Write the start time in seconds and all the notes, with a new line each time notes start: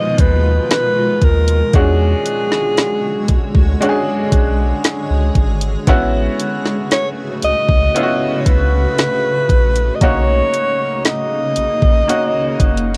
Already playing: B2 D#3 F3 G#3 B3 D#4 F4 D#5
0.18 D#2 B4, kick, closed hi-hat
0.71 B4, snare, closed hi-hat
1.22 D#2 A#4, kick, closed hi-hat, open hi-hat
1.48 closed hi-hat
1.73 E2 D3 G#3 C#4 D4 F#4 G#4 C#5, kick, closed hi-hat
2.26 closed hi-hat
2.52 snare
2.77 snare, closed hi-hat
3.28 D2, kick, closed hi-hat
3.55 D2, kick
3.80 G#3 C#4 D4 F#4 G#4, closed hi-hat
3.89 G#4
4.32 B1, kick, closed hi-hat
4.84 snare, closed hi-hat
5.10 C#2
5.35 G#1, kick, closed hi-hat, open hi-hat
5.61 closed hi-hat
5.87 A1 C#3 A3 B3 C#4 E4 F#4, kick, closed hi-hat
6.40 closed hi-hat
6.66 snare
6.91 C#5, snare, closed hi-hat
7.42 C#2 D#5, closed hi-hat
7.68 C#2, kick
7.94 B3 C#4 E4 F4, closed hi-hat
8.03 F#4
8.40 C#5
8.46 C#2 B4, kick, closed hi-hat
8.98 snare, closed hi-hat
9.49 A#1, kick, closed hi-hat, open hi-hat
9.76 closed hi-hat
9.95 D#5
10.01 B1 C#3 A#3 C#4 D#4 F#4 C#5, kick, closed hi-hat
10.54 closed hi-hat
11.05 D#5, snare, closed hi-hat
11.56 A#1, closed hi-hat
11.82 A#1, kick
12.08 A#3 C#4 D#4 F#4, closed hi-hat
12.60 F#1, kick, closed hi-hat
12.77 closed hi-hat